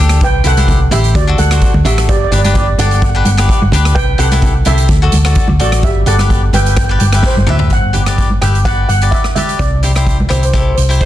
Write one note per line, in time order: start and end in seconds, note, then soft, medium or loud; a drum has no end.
0.00 0.21 D2 loud
0.00 0.21 D4 medium
0.00 0.22 G4 medium
0.00 0.22 A4 medium
0.09 cross-stick medium
0.09 closed hi-hat medium
0.21 0.43 C2 loud
0.21 0.44 B4 medium
0.21 0.47 G5 loud
0.21 kick loud
0.21 closed hi-hat medium
0.44 0.89 C2 medium
0.44 0.52 E4 medium
0.44 0.53 G4 medium
0.44 0.89 A4 medium
0.44 0.53 C5 medium
0.44 0.94 F#5 loud
0.44 closed hi-hat medium
0.44 low conga medium
0.57 0.78 E4 medium
0.57 0.79 G4 medium
0.57 0.79 C5 medium
0.57 closed hi-hat medium
0.57 high conga medium
0.67 kick medium
0.67 closed hi-hat medium
0.67 low conga medium
0.91 1.14 A1 medium
0.91 1.13 E4 medium
0.91 1.13 G4 medium
0.91 1.14 G4 medium
0.91 1.14 C5 medium
0.91 1.16 E5 medium
0.91 closed hi-hat medium
0.91 high conga medium
0.91 low conga medium
1.04 closed hi-hat medium
1.15 1.37 D2 medium
1.15 1.37 F#4 medium
1.15 1.40 D5 medium
1.15 kick loud
1.15 closed hi-hat medium
1.27 1.41 D4 medium
1.27 1.41 F#4 medium
1.27 1.42 A4 medium
1.38 1.60 D2 medium
1.38 1.82 A4 medium
1.38 1.82 F#5 medium
1.38 closed hi-hat medium
1.38 high conga medium
1.51 1.72 D4 medium
1.51 1.72 F#4 medium
1.51 1.73 C5 medium
1.51 cross-stick medium
1.51 closed hi-hat medium
1.61 kick medium
1.61 closed hi-hat medium
1.74 1.84 D2 medium
1.74 high conga medium
1.85 2.09 A1 loud
1.85 2.09 D4 medium
1.85 2.09 F#4 medium
1.85 1.97 G4 medium
1.85 2.10 A4 medium
1.85 1.96 E5 medium
1.85 closed hi-hat medium
1.85 low conga medium
1.98 cross-stick medium
1.98 closed hi-hat medium
2.09 2.31 G1 loud
2.09 2.17 G4 medium
2.09 2.15 D5 medium
2.09 kick loud
2.09 closed hi-hat medium
2.17 2.23 D5 medium
2.24 2.30 D5 medium
2.31 2.75 G1 medium
2.31 2.40 D4 medium
2.31 2.40 G4 medium
2.31 2.40 B4 medium
2.31 2.37 D5 medium
2.31 closed hi-hat medium
2.31 low conga medium
2.39 2.46 D5 medium
2.44 2.66 D4 medium
2.44 2.66 G4 medium
2.44 2.66 B4 medium
2.44 2.53 D5 medium
2.44 closed hi-hat medium
2.44 high conga medium
2.54 2.61 D5 medium
2.54 kick medium
2.54 closed hi-hat medium
2.54 low conga medium
2.62 2.69 D5 medium
2.78 3.22 G1 medium
2.78 3.01 D4 medium
2.78 3.01 G4 medium
2.78 2.87 A4 medium
2.78 3.01 D5 medium
2.78 2.86 F#5 medium
2.78 closed hi-hat medium
2.78 high conga medium
2.78 low conga medium
2.87 2.94 F#5 medium
2.87 closed hi-hat medium
2.95 3.01 F#5 medium
3.02 3.08 F#5 medium
3.02 kick loud
3.02 closed hi-hat medium
3.09 3.16 F#5 medium
3.15 3.28 D4 medium
3.15 3.29 G4 medium
3.15 3.29 B4 medium
3.15 3.24 F#5 medium
3.25 3.48 G1 medium
3.25 3.31 F#5 medium
3.25 closed hi-hat medium
3.25 high conga medium
3.32 3.38 F#5 medium
3.37 3.59 D4 medium
3.37 3.59 G4 medium
3.37 3.60 B4 medium
3.37 3.44 F#5 medium
3.37 cross-stick loud
3.37 closed hi-hat medium
3.45 3.52 F#5 medium
3.45 kick medium
3.49 3.61 F#5 medium
3.49 closed hi-hat medium
3.62 3.72 G1 medium
3.62 high conga medium
3.72 3.95 D2 loud
3.72 3.96 D4 medium
3.72 3.97 G4 medium
3.72 3.97 B4 loud
3.72 closed hi-hat medium
3.72 low conga medium
3.85 cross-stick medium
3.85 closed hi-hat medium
3.95 4.18 C2 loud
3.95 4.06 B4 medium
3.95 4.06 G5 loud
3.95 kick loud
3.95 closed hi-hat medium
4.18 4.63 C2 medium
4.18 4.26 E4 medium
4.18 4.27 G4 medium
4.18 4.63 A4 medium
4.18 4.27 C5 medium
4.18 4.63 F#5 loud
4.18 closed hi-hat medium
4.18 low conga medium
4.31 4.53 E4 medium
4.31 4.53 G4 medium
4.31 4.54 A4 medium
4.31 closed hi-hat medium
4.31 high conga medium
4.42 kick medium
4.42 closed hi-hat medium
4.42 low conga medium
4.65 4.88 C2 medium
4.65 4.87 E4 medium
4.65 4.88 G4 medium
4.65 5.57 A4 medium
4.65 4.88 C5 medium
4.65 5.56 E5 medium
4.65 closed hi-hat medium
4.65 high conga medium
4.65 low conga medium
4.78 closed hi-hat medium
4.88 5.11 D2 medium
4.88 kick loud
4.88 closed hi-hat medium
5.02 5.16 F#4 medium
5.02 5.16 A4 medium
5.02 5.16 D5 medium
5.12 5.35 D2 medium
5.12 closed hi-hat medium
5.12 high conga medium
5.25 5.46 F#4 medium
5.25 5.47 A4 medium
5.25 5.47 D5 loud
5.25 cross-stick medium
5.25 closed hi-hat medium
5.35 kick loud
5.35 closed hi-hat medium
5.48 5.59 D2 medium
5.48 high conga medium
5.59 5.83 A1 loud
5.59 5.83 F#4 medium
5.59 5.83 A4 medium
5.59 5.84 D5 medium
5.59 closed hi-hat medium
5.72 cross-stick loud
5.72 closed hi-hat medium
5.83 6.05 G1 loud
5.83 6.06 G4 medium
5.83 6.06 E5 medium
5.83 kick loud
5.83 closed hi-hat medium
6.06 6.50 G1 medium
6.06 6.14 G4 medium
6.06 6.51 A4 medium
6.06 6.14 B4 medium
6.06 6.15 D5 medium
6.06 6.55 F#5 medium
6.06 closed hi-hat medium
6.06 low conga medium
6.19 6.41 G4 medium
6.19 6.41 B4 medium
6.19 6.41 D5 medium
6.19 cross-stick medium
6.19 closed hi-hat medium
6.19 high conga medium
6.30 kick medium
6.30 closed hi-hat medium
6.53 6.97 G1 medium
6.53 6.75 G4 medium
6.53 6.61 B4 medium
6.53 6.75 B4 medium
6.53 6.76 E5 medium
6.53 6.61 G5 medium
6.53 closed hi-hat medium
6.53 high conga medium
6.53 low conga medium
6.62 6.68 G5 medium
6.66 6.75 G5 medium
6.66 closed hi-hat medium
6.76 6.82 G5 medium
6.76 kick loud
6.76 cross-stick medium
6.76 closed hi-hat medium
6.83 6.90 G5 medium
6.89 7.03 G4 medium
6.89 7.04 B4 medium
6.89 7.04 D5 medium
6.89 6.98 G5 medium
6.99 7.22 G1 medium
6.99 7.06 G5 medium
6.99 closed hi-hat medium
6.99 high conga medium
7.07 7.14 G5 medium
7.13 7.34 G4 medium
7.13 7.35 B4 medium
7.13 7.35 E5 medium
7.13 7.21 G5 medium
7.13 cross-stick medium
7.13 closed hi-hat medium
7.23 7.49 C5 medium
7.23 7.29 G5 medium
7.23 kick loud
7.23 snare medium
7.30 7.37 G5 medium
7.36 7.47 G1 medium
7.36 high conga medium
7.47 7.69 D2 medium
7.47 7.71 G4 medium
7.47 7.71 B4 medium
7.47 7.72 E5 medium
7.47 7.60 E5 medium
7.47 mid tom medium
7.47 low conga medium
7.59 floor tom loud
7.70 8.37 G1 medium
7.70 8.44 F#5 medium
7.70 kick loud
7.70 closed hi-hat medium
7.93 8.01 G4 medium
7.93 8.02 B4 medium
7.93 8.02 D5 medium
7.93 closed hi-hat medium
7.93 low conga medium
8.06 8.28 G4 medium
8.06 8.28 B4 medium
8.06 8.29 D5 medium
8.06 cross-stick medium
8.06 closed hi-hat medium
8.18 kick medium
8.18 closed hi-hat medium
8.30 high conga medium
8.41 8.85 G1 medium
8.41 8.57 G4 medium
8.41 8.57 B4 medium
8.41 8.57 E5 medium
8.41 8.63 G5 medium
8.41 cross-stick medium
8.41 closed hi-hat medium
8.41 low conga medium
8.55 closed hi-hat medium
8.65 8.87 G4 medium
8.65 8.87 B4 medium
8.65 8.87 D5 medium
8.65 8.87 F#5 medium
8.65 kick loud
8.65 closed hi-hat medium
8.89 9.11 G1 medium
8.89 9.13 F#5 medium
8.89 closed hi-hat medium
9.01 9.22 G4 medium
9.01 9.23 B4 medium
9.01 9.23 D5 medium
9.01 closed hi-hat medium
9.11 9.34 E5 medium
9.11 kick medium
9.11 closed hi-hat medium
9.24 cross-stick medium
9.35 9.60 G4 medium
9.35 9.60 B4 medium
9.35 9.60 D5 medium
9.35 9.46 E5 medium
9.35 closed hi-hat medium
9.35 high conga medium
9.35 low conga medium
9.49 closed hi-hat medium
9.59 10.26 C2 loud
9.59 10.32 D5 medium
9.59 kick loud
9.59 closed hi-hat medium
9.83 9.90 E4 medium
9.83 9.91 G4 medium
9.83 9.91 C5 medium
9.83 closed hi-hat medium
9.83 low conga medium
9.95 10.16 E4 medium
9.95 10.17 G4 medium
9.95 10.17 C5 medium
9.95 cross-stick medium
9.95 closed hi-hat medium
10.07 kick medium
10.07 closed hi-hat medium
10.20 high conga medium
10.29 10.74 C2 medium
10.29 10.44 E4 medium
10.29 10.44 G4 medium
10.29 10.36 C5 medium
10.29 10.45 C5 medium
10.29 cross-stick medium
10.29 closed hi-hat medium
10.29 low conga medium
10.37 10.43 C5 soft
10.43 10.50 C5 medium
10.43 closed hi-hat medium
10.51 10.75 E4 medium
10.51 10.75 G4 medium
10.51 10.76 A4 medium
10.51 10.59 C5 medium
10.51 kick loud
10.51 closed hi-hat medium
10.60 10.67 C5 medium
10.68 10.74 C5 medium
10.75 10.99 C2 medium
10.75 10.81 C5 medium
10.75 closed hi-hat medium
10.83 10.90 C5 soft
10.89 11.05 E4 medium
10.89 11.05 G4 medium
10.89 11.05 C5 medium
10.89 closed hi-hat medium
11.01 11.05 C5 medium
11.01 kick medium
11.01 closed hi-hat medium